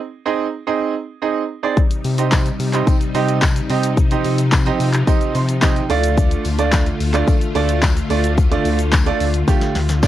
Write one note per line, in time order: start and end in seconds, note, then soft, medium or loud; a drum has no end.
0.25 0.45 C4 loud
0.25 0.45 D#4 medium
0.25 0.45 G#4 medium
0.25 0.45 D#5 loud
0.67 0.93 C4 medium
0.67 0.93 D#4 medium
0.67 0.93 G#4 medium
0.67 0.93 D#5 loud
1.22 1.41 C4 medium
1.22 1.41 D#4 medium
1.22 1.41 G#4 medium
1.22 1.41 D#5 medium
1.63 1.77 C4 medium
1.63 1.77 D#4 medium
1.63 1.77 G#4 medium
1.63 1.77 D5 medium
1.77 5.86 C3 medium
1.77 3.95 G3 medium
1.77 5.86 D#4 medium
1.77 kick loud
1.77 shaker medium
1.91 closed hi-hat medium
1.91 shaker medium
2.05 2.51 C3 medium
2.05 open hi-hat medium
2.05 tambourine medium
2.05 shaker medium
2.18 2.44 C4 medium
2.18 2.44 D#4 medium
2.18 2.44 G4 medium
2.18 2.44 D#5 medium
2.18 closed hi-hat medium
2.18 shaker medium
2.31 kick loud
2.31 snare loud
2.31 clap loud
2.31 tambourine medium
2.31 shaker medium
2.46 closed hi-hat medium
2.46 shaker medium
2.60 2.83 C3 loud
2.60 open hi-hat medium
2.60 tambourine soft
2.60 shaker medium
2.73 2.93 C4 medium
2.73 2.93 D#4 medium
2.73 2.93 G4 medium
2.73 2.93 D#5 medium
2.73 clap medium
2.73 closed hi-hat medium
2.73 shaker medium
2.87 kick loud
2.87 tambourine medium
2.87 shaker medium
3.01 closed hi-hat medium
3.01 shaker medium
3.14 3.61 C3 medium
3.14 3.40 C4 loud
3.14 3.40 D#4 medium
3.14 3.40 G4 medium
3.14 3.40 D#5 loud
3.14 open hi-hat medium
3.14 tambourine soft
3.14 shaker soft
3.28 closed hi-hat medium
3.28 shaker medium
3.42 kick loud
3.42 snare loud
3.42 clap loud
3.42 tambourine medium
3.42 shaker medium
3.56 closed hi-hat medium
3.56 shaker medium
3.70 4.16 C3 medium
3.70 3.89 C4 medium
3.70 3.89 D#4 medium
3.70 3.89 G4 medium
3.70 3.89 D#5 loud
3.70 open hi-hat medium
3.70 tambourine soft
3.70 shaker medium
3.83 closed hi-hat loud
3.83 shaker medium
3.97 5.88 F3 medium
3.97 kick loud
3.97 shaker medium
4.11 4.37 C4 medium
4.11 4.37 D#4 medium
4.11 4.37 G4 medium
4.11 4.37 D#5 loud
4.11 closed hi-hat medium
4.11 shaker medium
4.25 4.71 C3 medium
4.25 open hi-hat medium
4.25 tambourine medium
4.25 shaker medium
4.38 closed hi-hat medium
4.38 shaker medium
4.52 kick loud
4.52 snare medium
4.52 clap loud
4.52 tambourine medium
4.52 shaker medium
4.66 4.85 C4 loud
4.66 4.85 D#4 medium
4.66 4.85 G4 medium
4.66 4.86 D#5 loud
4.66 closed hi-hat medium
4.66 shaker medium
4.80 5.03 C3 medium
4.80 open hi-hat medium
4.80 tambourine soft
4.80 shaker medium
4.94 clap medium
4.94 closed hi-hat medium
4.94 shaker medium
5.07 5.33 C4 medium
5.07 5.33 D#4 medium
5.07 5.33 G4 medium
5.07 5.33 D#5 loud
5.07 kick loud
5.07 tambourine medium
5.07 shaker medium
5.21 closed hi-hat medium
5.21 shaker medium
5.35 5.81 C3 medium
5.35 5.61 C6 medium
5.35 open hi-hat medium
5.35 tambourine soft
5.35 shaker medium
5.49 closed hi-hat medium
5.49 shaker medium
5.62 5.82 C4 medium
5.62 5.82 D#4 medium
5.62 5.82 G4 medium
5.62 5.82 D#5 medium
5.62 5.88 G5 medium
5.62 kick loud
5.62 snare loud
5.62 clap loud
5.62 tambourine loud
5.62 shaker medium
5.76 closed hi-hat medium
5.76 shaker medium
5.90 6.36 D2 loud
5.90 10.07 D3 medium
5.90 6.45 A3 loud
5.90 10.07 A3 medium
5.90 6.45 D4 medium
5.90 10.07 F4 medium
5.90 6.45 F4 medium
5.90 6.45 D5 loud
5.90 6.16 F5 medium
5.90 open hi-hat medium
5.90 tambourine soft
5.90 shaker medium
6.03 closed hi-hat loud
6.03 shaker loud
6.17 kick loud
6.17 tambourine soft
6.17 shaker medium
6.31 closed hi-hat medium
6.31 shaker medium
6.45 6.91 D2 medium
6.45 open hi-hat medium
6.45 tambourine medium
6.45 shaker medium
6.58 6.84 A3 medium
6.58 6.84 D4 medium
6.58 6.84 F4 medium
6.58 6.85 D5 loud
6.58 closed hi-hat medium
6.58 shaker medium
6.72 kick loud
6.72 snare loud
6.72 clap loud
6.72 tambourine medium
6.72 shaker medium
6.86 closed hi-hat medium
6.86 shaker medium
7.00 7.23 D2 loud
7.00 open hi-hat medium
7.00 tambourine soft
7.00 shaker medium
7.14 7.33 A3 medium
7.14 7.33 D4 medium
7.14 7.33 F4 medium
7.14 7.33 D5 loud
7.14 clap medium
7.14 closed hi-hat medium
7.14 shaker medium
7.28 kick loud
7.28 tambourine medium
7.28 shaker medium
7.41 closed hi-hat medium
7.41 shaker medium
7.55 8.01 D2 medium
7.55 7.81 A3 loud
7.55 7.81 D4 medium
7.55 7.81 F4 medium
7.55 7.81 D5 loud
7.55 open hi-hat medium
7.55 tambourine soft
7.55 shaker medium
7.69 closed hi-hat medium
7.69 shaker medium
7.82 kick loud
7.82 snare loud
7.82 clap loud
7.82 tambourine medium
7.82 shaker medium
7.97 closed hi-hat medium
7.97 shaker medium
8.10 8.56 D2 medium
8.10 8.29 A3 medium
8.10 8.29 D4 medium
8.10 8.29 F4 medium
8.10 8.29 D5 loud
8.10 open hi-hat medium
8.10 tambourine soft
8.10 shaker medium
8.24 closed hi-hat loud
8.24 shaker medium
8.38 kick loud
8.38 tambourine soft
8.38 shaker medium
8.51 8.77 A3 medium
8.51 8.77 D4 medium
8.51 8.77 F4 medium
8.51 8.77 D5 loud
8.51 closed hi-hat medium
8.51 shaker medium
8.65 9.12 D2 medium
8.65 open hi-hat medium
8.65 tambourine medium
8.65 shaker medium
8.79 closed hi-hat medium
8.79 shaker medium
8.92 kick loud
8.92 snare medium
8.92 clap loud
8.92 tambourine medium
8.92 shaker medium
9.06 9.26 A3 loud
9.06 9.26 D4 medium
9.06 9.26 F4 medium
9.06 9.26 D5 loud
9.06 closed hi-hat medium
9.06 shaker medium
9.20 9.44 D2 loud
9.20 open hi-hat medium
9.20 tambourine soft
9.20 shaker medium
9.34 closed hi-hat medium
9.34 shaker medium
9.48 9.73 A3 medium
9.48 9.73 D4 medium
9.48 9.73 F4 medium
9.48 9.74 G4 loud
9.48 kick loud
9.48 snare medium
9.48 tambourine medium
9.48 shaker medium
9.61 snare medium
9.61 closed hi-hat medium
9.61 shaker medium
9.75 10.07 D2 medium
9.75 snare medium
9.75 open hi-hat medium
9.75 shaker medium
9.89 snare medium
9.89 closed hi-hat medium
9.89 shaker medium
10.03 10.07 A3 medium
10.03 10.07 D4 medium
10.03 10.07 F4 medium
10.03 10.07 D5 medium
10.03 kick loud
10.03 snare medium
10.03 tambourine loud
10.03 shaker medium